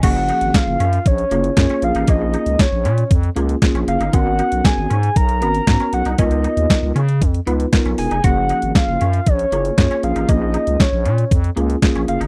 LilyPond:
<<
  \new Staff \with { instrumentName = "Soft synth lead" } { \time 4/4 \key fis \major \tempo 4 = 117 fis''4 eis''4 cis''4 cis''8 eis''8 | dis''4 cis''4 r4. eis''8 | fis''4 gis''4 ais''4. fis''8 | dis''4. r2 gis''8 |
fis''4 eis''4 cis''4 cis''8 eis''8 | dis''4 cis''4 r4. eis''8 | }
  \new Staff \with { instrumentName = "Tine electric piano" } { \time 4/4 \key fis \major << { <dis'' gis''>16 r2. r8. | r1 | r1 | r1 |
r1 | r1 | } \\ { <eis ais cis' gis'>4. r4 <ais cis' eis' gis'>8 <ais cis' eis' gis'>8 <ais cis' eis' gis'>8~ | <ais cis' eis' gis'>4 r4. <ais cis' eis' gis'>8 <ais cis' eis' gis'>4 | <b cis' fis' ais'>4. r4 <b cis' fis' ais'>8 <b cis' fis' ais'>4 | <b dis' eis' ais'>4. r4 <b dis' eis' b'>8 <b dis' eis' ais'>4 |
<eis ais cis' gis'>4. r4 <ais cis' eis' gis'>8 <ais cis' eis' gis'>8 <ais cis' eis' gis'>8~ | <ais cis' eis' gis'>4 r4. <ais cis' eis' gis'>8 <ais cis' eis' gis'>4 | } >> }
  \new Staff \with { instrumentName = "Clean electric guitar" } { \time 4/4 \key fis \major fis'16 r16 dis'16 r8. cis'16 r8. ais16 r8 cis'16 r16 dis'16 | ais16 r16 dis'16 r8. cis'16 r8. ais16 r8 cis'16 r16 dis'16 | gis16 r16 dis'16 r8. cis'16 r8. b16 r8 cis'16 r16 dis'16 | cis'16 r16 dis'16 r8. cis'16 r8. b16 r8 cis'16 r16 dis'16 |
fis'16 r16 dis'16 r8. cis'16 r8. ais16 r8 cis'16 r16 dis'16 | ais16 r16 dis'16 r8. cis'16 r8. ais16 r8 cis'16 r16 dis'16 | }
  \new Staff \with { instrumentName = "FM bass" } { \clef bass \time 4/4 \key fis \major fis,,8. gis,,16 r16 fis,,16 fis,8 ais,,8 fis,,8 fis,16 r16 ais,,16 a,,16 | ais,,8. cis,16 r16 ais,,16 ais,8 eis,8 cis,8 r16 ais,,16 fis,,16 g,,16 | gis,,8. b,,16 r16 gis,,16 gis,8 b,,8 gis,,8 gis,16 r16 b,,16 bis,,16 | cis,8. dis,16 r16 cis,16 cis8 eis,8 cis,8 r16 b,,16 e,,16 eis,,16 |
fis,,8. gis,,16 r16 fis,,16 fis,8 ais,,8 fis,,8 fis,16 r16 ais,,16 a,,16 | ais,,8. cis,16 r16 ais,,16 ais,8 eis,8 cis,8 r16 ais,,16 fis,,16 g,,16 | }
  \new DrumStaff \with { instrumentName = "Drums" } \drummode { \time 4/4 <cymc hh bd>8 hh16 hh16 <hc hh bd sn>8 hh16 hh16 <hh bd>16 hh16 hh16 hh16 <hc hh bd sn>16 hh16 hh16 hh16 | <hh bd>8 hh16 hh16 <hc hh bd sn>8 hh16 hh16 <hh bd>16 hh16 hh16 hh16 <hc hh bd sn>16 hh16 hh16 hh16 | <hh bd>8 hh16 hh16 <hc hh bd sn>8 hh16 hh16 <hh bd>16 hh16 hh16 hh16 <hc hh bd sn>16 hh16 hh16 hh16 | <hh bd>16 hh16 hh16 hh16 <hc hh bd sn>8 hh16 hh16 <hh bd>16 hh16 hh16 hh16 <hc hh bd sn>16 hh16 hho16 hh16 |
<hh bd>8 hh16 hh16 <hc hh bd sn>8 hh16 hh16 <hh bd>16 hh16 hh16 hh16 <hc hh bd sn>16 hh16 hh16 hh16 | <hh bd>8 hh16 hh16 <hc hh bd sn>8 hh16 hh16 <hh bd>16 hh16 hh16 hh16 <hc hh bd sn>16 hh16 hh16 hh16 | }
>>